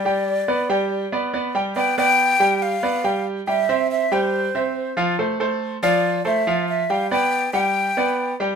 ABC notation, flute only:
X:1
M:4/4
L:1/8
Q:1/4=140
K:Gmix
V:1 name="Flute"
d6 z2 | g g3 f3 z | e2 e c4 z | z3 d2 e2 e |
f g2 g4 z |]